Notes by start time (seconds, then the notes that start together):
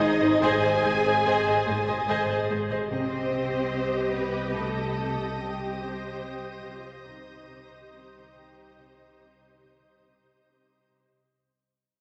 Already playing: G#1 D#4 D#5 D#6 G#6
0.00 G#2
0.21 G#1 G#4 C5 D#5
0.42 G#1 G#2 G#4 C5 D#5 G#5
0.63 G#1 G#4 C5 D#5
0.72 A6
0.84 G#1 G#2 G#4 C5
1.05 G#1 G#4 C5 D#5
1.25 G#1 G#2 G#4 C5 D#5 G#5
1.46 G#1 G#4 C5 D#5
1.67 G#1 G#2 G#4 C5
1.88 G#1 G#4 C5 D#5
2.08 G#1 G#3 G#4 C5 D#5 G#5
2.29 G#1 G#4 C5 D#5
2.50 G#1 G#2 G#4 C5
2.70 G#1 G#4 C5 D#5
2.90 C2 C3 C4 G4 C5 D#5 D#6 A#6
3.32 C3
3.74 C4 G6
4.14 C3 B3 B4
4.55 C3 A3 A4
4.98 C3
5.38 C3 G3 G4 C5 D#5
5.81 C3
6.22 C4
6.63 C3 F3 F4
7.05 C2 C3 D#3 D#4 G4 C5 D#5
7.50 C3
7.92 C4
8.35 C3 G5
8.78 C3
9.21 C3
9.64 C3
10.07 C3
10.49 C4
10.92 C3